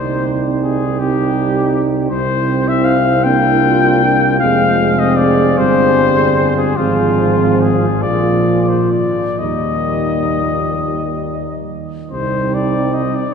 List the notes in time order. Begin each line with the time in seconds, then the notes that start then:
Already playing: C2 G3 C4 D#4 C5
0.63 G#4
0.99 G3 C4 D#4 G4
2.09 C2 C4 E4 C5
2.68 E5
2.84 F5
3.24 A#3 D4 E4 G5
3.65 F4
4.04 G4
4.40 F1 G#3 C4 G#4 F5
4.99 D#5
5.17 D5
5.58 G1 G3 C5
6.57 G#4
6.77 G#1 F3 C4 F4 G#4
7.62 G#4
8.02 A#1 F3 A#3 F4 D5
8.69 C5
8.91 D5
9.39 D#2 G3 A#3 D#4 D#5
12.11 C2 G3 C4 D#4 C5
12.54 D5
12.94 D#5
13.15 D5